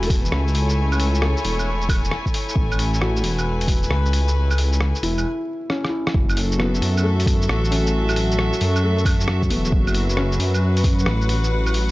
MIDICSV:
0, 0, Header, 1, 5, 480
1, 0, Start_track
1, 0, Key_signature, 3, "minor"
1, 0, Tempo, 447761
1, 827, Time_signature, 4, 2, 24, 8
1, 12769, End_track
2, 0, Start_track
2, 0, Title_t, "String section"
2, 0, Program_c, 0, 48
2, 0, Note_on_c, 0, 57, 80
2, 0, Note_on_c, 0, 64, 69
2, 0, Note_on_c, 0, 66, 75
2, 0, Note_on_c, 0, 80, 75
2, 271, Note_off_c, 0, 66, 0
2, 625, Note_on_c, 0, 73, 77
2, 3530, Note_on_c, 0, 71, 81
2, 3682, Note_off_c, 0, 73, 0
2, 5622, Note_off_c, 0, 57, 0
2, 5624, Note_off_c, 0, 80, 0
2, 5625, Note_off_c, 0, 71, 0
2, 5627, Note_off_c, 0, 64, 0
2, 6608, Note_on_c, 0, 54, 78
2, 6836, Note_on_c, 0, 69, 79
2, 6940, Note_on_c, 0, 66, 76
2, 7135, Note_on_c, 0, 76, 72
2, 10651, Note_on_c, 0, 71, 82
2, 10843, Note_off_c, 0, 69, 0
2, 11478, Note_on_c, 0, 78, 74
2, 11615, Note_off_c, 0, 76, 0
2, 12769, Note_off_c, 0, 54, 0
2, 12769, Note_off_c, 0, 66, 0
2, 12769, Note_off_c, 0, 71, 0
2, 12769, Note_off_c, 0, 78, 0
2, 12769, End_track
3, 0, Start_track
3, 0, Title_t, "Felt piano"
3, 0, Program_c, 1, 0
3, 0, Control_c, 1, 64, 127
3, 0, Note_on_c, 1, 66, 63
3, 76, Note_on_c, 1, 69, 52
3, 216, Note_on_c, 1, 71, 52
3, 1292, Note_off_c, 1, 69, 0
3, 1308, Note_on_c, 1, 69, 70
3, 1359, Note_off_c, 1, 66, 0
3, 1656, Note_off_c, 1, 71, 0
3, 2802, Note_off_c, 1, 69, 0
3, 3225, Note_on_c, 1, 66, 65
3, 4721, Note_off_c, 1, 66, 0
3, 5391, Note_on_c, 1, 64, 66
3, 6106, Note_on_c, 1, 61, 73
3, 6299, Note_off_c, 1, 64, 0
3, 6315, Note_on_c, 1, 64, 52
3, 6602, Control_c, 1, 64, 0
3, 6768, Control_c, 1, 64, 127
3, 6783, Note_off_c, 1, 61, 0
3, 6968, Note_off_c, 1, 64, 0
3, 7062, Note_on_c, 1, 59, 71
3, 7538, Note_on_c, 1, 57, 73
3, 8265, Note_on_c, 1, 61, 63
3, 8559, Note_off_c, 1, 59, 0
3, 9037, Note_off_c, 1, 57, 0
3, 9474, Note_on_c, 1, 57, 62
3, 9761, Note_off_c, 1, 61, 0
3, 10184, Note_on_c, 1, 59, 60
3, 10912, Note_on_c, 1, 61, 74
3, 10965, Note_off_c, 1, 57, 0
3, 11680, Note_off_c, 1, 59, 0
3, 12404, Note_off_c, 1, 61, 0
3, 12769, End_track
4, 0, Start_track
4, 0, Title_t, "Detuned saw bass"
4, 0, Program_c, 2, 39
4, 0, Note_on_c, 2, 28, 84
4, 337, Note_off_c, 2, 28, 0
4, 345, Note_on_c, 2, 37, 96
4, 1445, Note_off_c, 2, 37, 0
4, 1548, Note_on_c, 2, 28, 85
4, 2257, Note_off_c, 2, 28, 0
4, 2741, Note_on_c, 2, 33, 96
4, 3454, Note_off_c, 2, 33, 0
4, 3461, Note_on_c, 2, 28, 87
4, 4173, Note_off_c, 2, 28, 0
4, 4182, Note_on_c, 2, 37, 94
4, 5283, Note_off_c, 2, 37, 0
4, 5386, Note_on_c, 2, 28, 84
4, 5626, Note_off_c, 2, 28, 0
4, 6590, Note_on_c, 2, 30, 96
4, 7298, Note_off_c, 2, 30, 0
4, 7308, Note_on_c, 2, 42, 86
4, 8017, Note_off_c, 2, 42, 0
4, 8032, Note_on_c, 2, 33, 97
4, 9128, Note_off_c, 2, 33, 0
4, 9233, Note_on_c, 2, 42, 86
4, 10187, Note_on_c, 2, 28, 92
4, 10203, Note_off_c, 2, 42, 0
4, 10414, Note_off_c, 2, 28, 0
4, 10421, Note_on_c, 2, 30, 96
4, 11134, Note_off_c, 2, 30, 0
4, 11140, Note_on_c, 2, 42, 90
4, 11853, Note_off_c, 2, 42, 0
4, 11864, Note_on_c, 2, 33, 95
4, 12769, Note_off_c, 2, 33, 0
4, 12769, End_track
5, 0, Start_track
5, 0, Title_t, "Drums"
5, 29, Note_on_c, 9, 46, 41
5, 29, Note_on_c, 9, 82, 28
5, 105, Note_on_c, 9, 36, 104
5, 108, Note_off_c, 9, 46, 0
5, 108, Note_on_c, 9, 46, 70
5, 136, Note_off_c, 9, 82, 0
5, 212, Note_off_c, 9, 36, 0
5, 215, Note_off_c, 9, 46, 0
5, 269, Note_on_c, 9, 82, 51
5, 345, Note_on_c, 9, 37, 102
5, 377, Note_off_c, 9, 82, 0
5, 452, Note_off_c, 9, 37, 0
5, 511, Note_on_c, 9, 82, 30
5, 588, Note_on_c, 9, 46, 71
5, 618, Note_off_c, 9, 82, 0
5, 695, Note_off_c, 9, 46, 0
5, 746, Note_on_c, 9, 82, 54
5, 853, Note_off_c, 9, 82, 0
5, 987, Note_on_c, 9, 75, 51
5, 987, Note_on_c, 9, 82, 41
5, 1068, Note_on_c, 9, 46, 73
5, 1094, Note_off_c, 9, 75, 0
5, 1094, Note_off_c, 9, 82, 0
5, 1175, Note_off_c, 9, 46, 0
5, 1229, Note_on_c, 9, 82, 50
5, 1307, Note_on_c, 9, 37, 96
5, 1336, Note_off_c, 9, 82, 0
5, 1414, Note_off_c, 9, 37, 0
5, 1469, Note_on_c, 9, 82, 41
5, 1550, Note_on_c, 9, 46, 73
5, 1576, Note_off_c, 9, 82, 0
5, 1657, Note_off_c, 9, 46, 0
5, 1706, Note_on_c, 9, 75, 34
5, 1706, Note_on_c, 9, 82, 50
5, 1813, Note_off_c, 9, 75, 0
5, 1813, Note_off_c, 9, 82, 0
5, 1947, Note_on_c, 9, 82, 28
5, 2024, Note_on_c, 9, 36, 97
5, 2030, Note_on_c, 9, 46, 74
5, 2030, Note_on_c, 9, 75, 58
5, 2054, Note_off_c, 9, 82, 0
5, 2131, Note_off_c, 9, 36, 0
5, 2137, Note_off_c, 9, 46, 0
5, 2137, Note_off_c, 9, 75, 0
5, 2192, Note_on_c, 9, 82, 49
5, 2267, Note_on_c, 9, 37, 97
5, 2299, Note_off_c, 9, 82, 0
5, 2374, Note_off_c, 9, 37, 0
5, 2422, Note_on_c, 9, 36, 57
5, 2431, Note_on_c, 9, 82, 29
5, 2510, Note_on_c, 9, 46, 74
5, 2529, Note_off_c, 9, 36, 0
5, 2539, Note_off_c, 9, 82, 0
5, 2617, Note_off_c, 9, 46, 0
5, 2670, Note_on_c, 9, 82, 52
5, 2741, Note_on_c, 9, 36, 107
5, 2777, Note_off_c, 9, 82, 0
5, 2848, Note_off_c, 9, 36, 0
5, 2913, Note_on_c, 9, 75, 53
5, 2913, Note_on_c, 9, 82, 43
5, 2991, Note_on_c, 9, 46, 76
5, 3020, Note_off_c, 9, 75, 0
5, 3020, Note_off_c, 9, 82, 0
5, 3098, Note_off_c, 9, 46, 0
5, 3152, Note_on_c, 9, 82, 52
5, 3232, Note_on_c, 9, 37, 91
5, 3259, Note_off_c, 9, 82, 0
5, 3339, Note_off_c, 9, 37, 0
5, 3393, Note_on_c, 9, 82, 42
5, 3470, Note_on_c, 9, 46, 75
5, 3500, Note_off_c, 9, 82, 0
5, 3577, Note_off_c, 9, 46, 0
5, 3628, Note_on_c, 9, 75, 35
5, 3628, Note_on_c, 9, 82, 52
5, 3736, Note_off_c, 9, 75, 0
5, 3736, Note_off_c, 9, 82, 0
5, 3871, Note_on_c, 9, 46, 43
5, 3871, Note_on_c, 9, 82, 29
5, 3942, Note_on_c, 9, 36, 97
5, 3945, Note_off_c, 9, 46, 0
5, 3945, Note_on_c, 9, 46, 76
5, 3978, Note_off_c, 9, 82, 0
5, 4049, Note_off_c, 9, 36, 0
5, 4052, Note_off_c, 9, 46, 0
5, 4106, Note_on_c, 9, 82, 53
5, 4187, Note_on_c, 9, 37, 96
5, 4213, Note_off_c, 9, 82, 0
5, 4294, Note_off_c, 9, 37, 0
5, 4349, Note_on_c, 9, 82, 31
5, 4430, Note_on_c, 9, 46, 74
5, 4456, Note_off_c, 9, 82, 0
5, 4537, Note_off_c, 9, 46, 0
5, 4590, Note_on_c, 9, 82, 53
5, 4697, Note_off_c, 9, 82, 0
5, 4832, Note_on_c, 9, 75, 53
5, 4832, Note_on_c, 9, 82, 43
5, 4911, Note_on_c, 9, 46, 73
5, 4939, Note_off_c, 9, 75, 0
5, 4939, Note_off_c, 9, 82, 0
5, 5018, Note_off_c, 9, 46, 0
5, 5069, Note_on_c, 9, 82, 55
5, 5151, Note_on_c, 9, 37, 96
5, 5177, Note_off_c, 9, 82, 0
5, 5258, Note_off_c, 9, 37, 0
5, 5308, Note_on_c, 9, 82, 44
5, 5392, Note_on_c, 9, 46, 73
5, 5416, Note_off_c, 9, 82, 0
5, 5500, Note_off_c, 9, 46, 0
5, 5554, Note_on_c, 9, 75, 37
5, 5554, Note_on_c, 9, 82, 53
5, 5661, Note_off_c, 9, 75, 0
5, 5661, Note_off_c, 9, 82, 0
5, 6109, Note_on_c, 9, 37, 60
5, 6216, Note_off_c, 9, 37, 0
5, 6266, Note_on_c, 9, 37, 63
5, 6374, Note_off_c, 9, 37, 0
5, 6507, Note_on_c, 9, 37, 84
5, 6586, Note_on_c, 9, 36, 115
5, 6614, Note_off_c, 9, 37, 0
5, 6693, Note_off_c, 9, 36, 0
5, 6748, Note_on_c, 9, 75, 55
5, 6748, Note_on_c, 9, 82, 45
5, 6827, Note_on_c, 9, 46, 73
5, 6855, Note_off_c, 9, 75, 0
5, 6855, Note_off_c, 9, 82, 0
5, 6934, Note_off_c, 9, 46, 0
5, 6988, Note_on_c, 9, 82, 57
5, 7071, Note_on_c, 9, 37, 97
5, 7095, Note_off_c, 9, 82, 0
5, 7178, Note_off_c, 9, 37, 0
5, 7232, Note_on_c, 9, 82, 46
5, 7312, Note_on_c, 9, 46, 72
5, 7339, Note_off_c, 9, 82, 0
5, 7419, Note_off_c, 9, 46, 0
5, 7476, Note_on_c, 9, 75, 36
5, 7476, Note_on_c, 9, 82, 57
5, 7583, Note_off_c, 9, 75, 0
5, 7583, Note_off_c, 9, 82, 0
5, 7716, Note_on_c, 9, 46, 43
5, 7716, Note_on_c, 9, 82, 33
5, 7786, Note_on_c, 9, 36, 105
5, 7797, Note_off_c, 9, 46, 0
5, 7797, Note_on_c, 9, 46, 76
5, 7823, Note_off_c, 9, 82, 0
5, 7893, Note_off_c, 9, 36, 0
5, 7905, Note_off_c, 9, 46, 0
5, 7954, Note_on_c, 9, 82, 59
5, 8033, Note_on_c, 9, 37, 104
5, 8062, Note_off_c, 9, 82, 0
5, 8141, Note_off_c, 9, 37, 0
5, 8196, Note_on_c, 9, 82, 33
5, 8275, Note_on_c, 9, 46, 75
5, 8303, Note_off_c, 9, 82, 0
5, 8382, Note_off_c, 9, 46, 0
5, 8434, Note_on_c, 9, 82, 60
5, 8541, Note_off_c, 9, 82, 0
5, 8672, Note_on_c, 9, 75, 53
5, 8672, Note_on_c, 9, 82, 47
5, 8751, Note_on_c, 9, 46, 73
5, 8779, Note_off_c, 9, 75, 0
5, 8779, Note_off_c, 9, 82, 0
5, 8858, Note_off_c, 9, 46, 0
5, 8913, Note_on_c, 9, 82, 58
5, 8990, Note_on_c, 9, 37, 106
5, 9021, Note_off_c, 9, 82, 0
5, 9097, Note_off_c, 9, 37, 0
5, 9144, Note_on_c, 9, 82, 46
5, 9228, Note_on_c, 9, 46, 69
5, 9251, Note_off_c, 9, 82, 0
5, 9335, Note_off_c, 9, 46, 0
5, 9389, Note_on_c, 9, 75, 36
5, 9389, Note_on_c, 9, 82, 58
5, 9496, Note_off_c, 9, 75, 0
5, 9496, Note_off_c, 9, 82, 0
5, 9630, Note_on_c, 9, 82, 32
5, 9704, Note_on_c, 9, 36, 108
5, 9709, Note_on_c, 9, 46, 72
5, 9709, Note_on_c, 9, 75, 63
5, 9738, Note_off_c, 9, 82, 0
5, 9811, Note_off_c, 9, 36, 0
5, 9817, Note_off_c, 9, 46, 0
5, 9817, Note_off_c, 9, 75, 0
5, 9867, Note_on_c, 9, 82, 57
5, 9945, Note_on_c, 9, 37, 113
5, 9974, Note_off_c, 9, 82, 0
5, 10052, Note_off_c, 9, 37, 0
5, 10104, Note_on_c, 9, 36, 64
5, 10105, Note_on_c, 9, 82, 33
5, 10189, Note_on_c, 9, 46, 72
5, 10212, Note_off_c, 9, 36, 0
5, 10212, Note_off_c, 9, 82, 0
5, 10296, Note_off_c, 9, 46, 0
5, 10344, Note_on_c, 9, 82, 61
5, 10423, Note_on_c, 9, 36, 126
5, 10451, Note_off_c, 9, 82, 0
5, 10530, Note_off_c, 9, 36, 0
5, 10584, Note_on_c, 9, 75, 51
5, 10584, Note_on_c, 9, 82, 46
5, 10661, Note_on_c, 9, 46, 71
5, 10691, Note_off_c, 9, 75, 0
5, 10691, Note_off_c, 9, 82, 0
5, 10768, Note_off_c, 9, 46, 0
5, 10823, Note_on_c, 9, 82, 58
5, 10902, Note_on_c, 9, 37, 104
5, 10930, Note_off_c, 9, 82, 0
5, 11009, Note_off_c, 9, 37, 0
5, 11065, Note_on_c, 9, 82, 46
5, 11147, Note_on_c, 9, 46, 70
5, 11172, Note_off_c, 9, 82, 0
5, 11254, Note_off_c, 9, 46, 0
5, 11303, Note_on_c, 9, 75, 34
5, 11303, Note_on_c, 9, 82, 55
5, 11410, Note_off_c, 9, 75, 0
5, 11410, Note_off_c, 9, 82, 0
5, 11543, Note_on_c, 9, 46, 40
5, 11543, Note_on_c, 9, 82, 33
5, 11620, Note_on_c, 9, 36, 111
5, 11622, Note_off_c, 9, 46, 0
5, 11622, Note_on_c, 9, 46, 72
5, 11650, Note_off_c, 9, 82, 0
5, 11728, Note_off_c, 9, 36, 0
5, 11729, Note_off_c, 9, 46, 0
5, 11781, Note_on_c, 9, 82, 55
5, 11859, Note_on_c, 9, 37, 114
5, 11888, Note_off_c, 9, 82, 0
5, 11966, Note_off_c, 9, 37, 0
5, 12022, Note_on_c, 9, 82, 32
5, 12105, Note_on_c, 9, 46, 69
5, 12129, Note_off_c, 9, 82, 0
5, 12212, Note_off_c, 9, 46, 0
5, 12265, Note_on_c, 9, 82, 60
5, 12372, Note_off_c, 9, 82, 0
5, 12506, Note_on_c, 9, 75, 49
5, 12506, Note_on_c, 9, 82, 44
5, 12587, Note_on_c, 9, 46, 71
5, 12613, Note_off_c, 9, 75, 0
5, 12613, Note_off_c, 9, 82, 0
5, 12694, Note_off_c, 9, 46, 0
5, 12769, End_track
0, 0, End_of_file